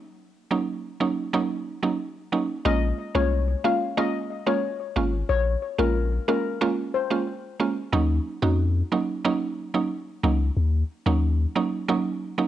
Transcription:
0.51 F#3 A#3 C#4 D#4
1.00 F#3 A#3 C#4 D#4
1.33 F#3 A#3 C#4 D#4
1.83 F#3 A#3 C#4 D#4
2.32 F#3 A#3 C#4 D#4
2.65 A#1 G#3 A#3 C#4 F4 D#5
3.15 C2 G#3 A#3 C#4 F4 C#5
3.64 G#3 A#3 C#4 F4 F5
3.97 G#3 A#3 C#4 F4 D#5
4.46 G#3 A#3 C#4 F4 C#5
4.96 G#1 G#3 A#3 C#4 F4
5.29 A#1 C#5
5.78 A#1 G#3 A#3 C#4 F4 A#4
6.28 G#3 A#3 C#4 F4 A#4
6.61 G#3 A#3 C#4 F4
6.94 C5
7.10 G#3 A#3 C#4 F4
7.60 G#3 A#3 C#4 F4
7.92 D#2 F#3 A#3 C#4 D#4
8.42 F2 A#3 C#4 D#4 F#4
8.92 F#3 A#3 C#4 D#4
9.25 F#3 A#3 C#4 D#4
9.74 F#3 A#3 C#4 D#4
10.23 C#2 F#3 A#3 C#4 D#4
10.57 D#2
11.06 D#2 F#3 A#3 C#4 D#4
11.55 F#3 A#3 C#4 D#4
11.88 F#3 A#3 C#4 D#4
12.38 F#3 A#3 C#4 D#4

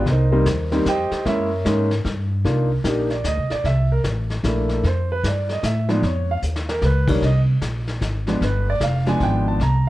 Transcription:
0.05 C2 D5, brush sweep, kick, snare
0.10 D#4 A#4 C5 D#5
0.32 G3 A#3 C4 D#4
0.46 D#2, kick, snare, hi-hat pedal
0.72 G3 A#3 C4 D#4, snare
0.85 F2 G4 C5 D#5 G5, kick, snare, hi-hat pedal
1.11 muted upright bass stroke, snare
1.25 F#2 G#3 A#3 C#4 E4 A#4 C#5 E5, brush sweep, kick, snare
1.65 G#2 G#3 A#3 C#4 D#4, kick, snare, hi-hat pedal
1.91 snare
2.05 G2, kick, snare
2.44 C2 A#3 D4 D#4 F4, brush sweep, kick, snare
2.84 A#1 A#3 D4 D#4 G4, kick, snare, hi-hat pedal
3.10 D5, snare
3.24 D2 D#5, kick, snare, hi-hat pedal
3.37 C2
3.50 A#1 D5, snare
3.64 C2 E5, brush sweep, kick, snare
3.92 A#4
4.04 A1, kick, snare, hi-hat pedal
4.30 snare
4.43 A#1 A3 A#3 D4 E4, kick, snare, hi-hat pedal
4.69 snare
4.83 F2 C5, brush sweep, kick, snare
5.12 B4
5.23 G2, kick, snare, hi-hat pedal
5.28 D5
5.49 D#5, snare
5.63 A2 E5, kick, snare, hi-hat pedal
5.89 F3 G#3 B3 D#4 D5, snare
6.02 F2 C#5, brush sweep, kick, snare
6.31 F5
6.42 D#2, hi-hat pedal
6.56 snare
6.69 A#4, snare
6.82 C#2 B4, snare
7.08 D#3 G3 A#3 D4 C#5, kick, crash
7.21 C2 D#5, brush sweep, kick, snare
7.61 A#1, kick, snare, hi-hat pedal
7.87 snare
8.01 G#1, kick, snare, hi-hat pedal
8.27 F3 G#3 B3 D4, snare
8.41 G1 B4, brush sweep, kick, snare
8.70 D5
8.80 F1 F5, kick, snare, hi-hat pedal
9.06 F3 G#3 B3 D4 G#5, snare
9.20 G#1 G5, kick, snare
9.48 A5
9.60 C2 A#5, brush sweep, kick, snare

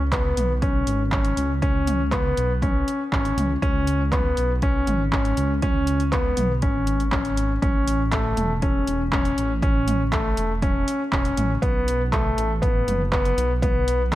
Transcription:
Already playing: C#2
0.12 B3, kick, clap, closed hi-hat
0.37 B1, closed hi-hat, mid tom
0.62 C#4, kick, closed hi-hat
0.87 G#1, closed hi-hat
1.12 C#4, kick, clap, mid tom
1.25 closed hi-hat
1.37 C#2, closed hi-hat
1.62 C#4, kick, closed hi-hat
1.87 closed hi-hat, mid tom
2.12 B3, kick, clap, closed hi-hat
2.37 B1, closed hi-hat
2.62 C#4, kick, closed hi-hat, mid tom
2.88 closed hi-hat
3.12 G#1 C#4, kick, clap
3.25 closed hi-hat
3.37 C#2, closed hi-hat, mid tom
3.62 C#2 C#4, kick, closed hi-hat
3.87 closed hi-hat
4.12 B3, kick, clap, closed hi-hat, mid tom
4.37 B1, closed hi-hat
4.62 C#4, kick, closed hi-hat
4.87 G#1, closed hi-hat, mid tom
5.13 C#4, kick, clap
5.25 closed hi-hat
5.37 C#2, closed hi-hat
5.62 C#4, kick, closed hi-hat, mid tom
5.87 closed hi-hat
6.00 closed hi-hat
6.12 B3, kick, clap, closed hi-hat
6.37 B1, closed hi-hat, mid tom
6.62 G#1 C#4, kick, closed hi-hat
6.87 closed hi-hat
7.00 closed hi-hat
7.12 C#4, kick, clap, mid tom
7.25 closed hi-hat
7.37 closed hi-hat
7.62 A1 C#4, kick, closed hi-hat, mid tom
7.88 closed hi-hat
8.12 A3, kick, clap, closed hi-hat
8.37 E1, closed hi-hat, mid tom
8.62 C#4, kick, closed hi-hat
8.87 E1, closed hi-hat
9.12 C#4, kick, clap, mid tom
9.25 closed hi-hat
9.38 A1, closed hi-hat
9.62 C#4, kick, closed hi-hat
9.88 closed hi-hat, mid tom
10.12 A3, kick, clap, closed hi-hat
10.37 E1, closed hi-hat
10.62 C#4, kick, closed hi-hat, mid tom
10.88 closed hi-hat
11.12 E1 C#4, kick, clap
11.25 closed hi-hat
11.37 A1, closed hi-hat, mid tom
11.62 B1 B3, kick, closed hi-hat
11.88 closed hi-hat
12.12 A3, kick, clap, closed hi-hat, mid tom
12.37 A1, closed hi-hat
12.62 B3, kick, closed hi-hat
12.87 F#1, closed hi-hat, mid tom
13.12 B3, kick, clap
13.25 closed hi-hat
13.37 B1, closed hi-hat
13.62 B3, kick, closed hi-hat, mid tom
13.88 closed hi-hat

